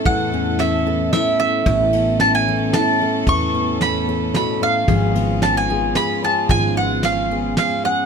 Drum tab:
RD |x-x-x-|xxx-x-|x-x-x-|xxx-x-|
SD |--o-o-|--o-o-|--o-o-|--o-o-|
BD |o-----|o-----|o-----|o-----|

RD |x-x-x-|
SD |--o-o-|
BD |o-----|